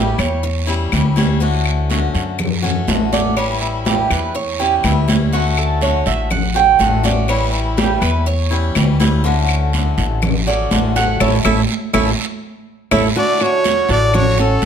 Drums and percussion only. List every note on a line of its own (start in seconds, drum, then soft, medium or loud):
0.19 high conga soft
0.19 short guiro medium
0.19 claves medium
0.44 high conga soft
0.44 long guiro medium
0.68 high conga soft
0.92 high conga medium
0.92 short guiro medium
0.92 claves medium
1.17 high conga medium
1.17 short guiro medium
1.41 high conga soft
1.41 long guiro medium
1.66 high conga soft
1.66 claves medium
1.91 high conga medium
1.91 short guiro medium
2.15 high conga soft
2.15 short guiro medium
2.39 high conga soft
2.39 low conga medium
2.39 long guiro medium
2.39 claves medium
2.64 high conga soft
2.64 low conga medium
2.88 high conga medium
2.88 short guiro medium
3.13 high conga medium
3.13 short guiro medium
3.37 long guiro medium
3.37 claves medium
3.61 high conga soft
3.86 high conga medium
3.86 short guiro medium
4.10 high conga soft
4.10 short guiro medium
4.10 claves medium
4.35 high conga soft
4.35 long guiro medium
4.59 high conga soft
4.84 high conga medium
4.84 short guiro medium
4.84 claves medium
5.08 high conga medium
5.08 short guiro medium
5.33 high conga soft
5.33 long guiro medium
5.57 high conga soft
5.57 claves medium
5.81 high conga medium
5.81 short guiro medium
6.06 high conga soft
6.06 short guiro medium
6.30 high conga soft
6.30 low conga medium
6.30 long guiro medium
6.30 claves medium
6.56 high conga soft
6.80 high conga medium
6.80 short guiro medium
7.04 high conga medium
7.04 short guiro medium
7.29 high conga soft
7.29 long guiro medium
7.29 claves medium
7.54 high conga soft
7.78 high conga medium
7.78 short guiro medium
8.02 high conga soft
8.02 short guiro medium
8.02 claves medium
8.27 high conga soft
8.27 long guiro medium
8.52 high conga soft
8.75 high conga medium
8.75 short guiro medium
8.75 claves medium
9.00 high conga medium
9.00 short guiro medium
9.25 high conga soft
9.25 long guiro medium
9.49 high conga soft
9.49 claves medium
9.73 high conga medium
9.73 short guiro medium
9.98 high conga soft
9.98 short guiro medium
10.22 high conga soft
10.22 low conga medium
10.22 long guiro medium
10.22 claves medium
10.47 high conga soft
10.71 high conga medium
10.71 short guiro medium
10.96 high conga medium
10.96 short guiro medium
11.20 high conga loud
11.20 long guiro loud
11.20 claves loud
11.45 high conga loud
11.45 long guiro medium
11.45 claves loud
11.94 high conga medium
11.94 long guiro medium
11.94 claves loud
12.91 high conga loud
12.91 long guiro loud
12.91 claves loud
13.15 high conga soft
13.15 long guiro medium
13.40 high conga soft
13.40 claves medium
13.64 high conga medium
13.64 short guiro medium
13.89 high conga soft
13.89 short guiro medium
14.13 high conga soft
14.13 low conga medium
14.13 long guiro medium
14.13 claves medium
14.39 high conga soft
14.62 short guiro medium